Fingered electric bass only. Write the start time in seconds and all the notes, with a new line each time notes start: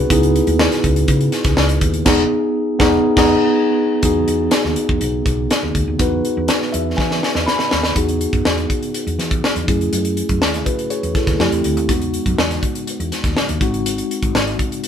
0.10 C#2
0.47 D#2
0.84 C#2
1.08 C#3
1.45 C#2
1.57 C#2
1.82 D#2
2.06 E1
2.80 E1
3.17 E1
4.03 E2
4.28 E2
4.65 D#2
4.89 E2
5.01 B1
5.26 B1
5.63 D#2
5.75 D2
5.88 D#2
6.00 E2
6.37 E2
6.74 E2
6.98 E3
7.35 E2
7.72 D#2
7.96 E2
8.33 F#2
8.46 E2
9.07 E2
9.19 E3
9.56 E2
9.68 F#2
9.80 F2
9.92 F#2
10.29 F#2
10.42 D#2
11.03 E2
11.27 D#2
11.40 F2
11.52 E2
11.65 D2
11.77 D#2
11.89 E2
12.26 F#2
12.38 E2
13.00 E2
13.24 D#2
13.49 D#2
13.61 G#1
14.23 G#1
14.35 G#1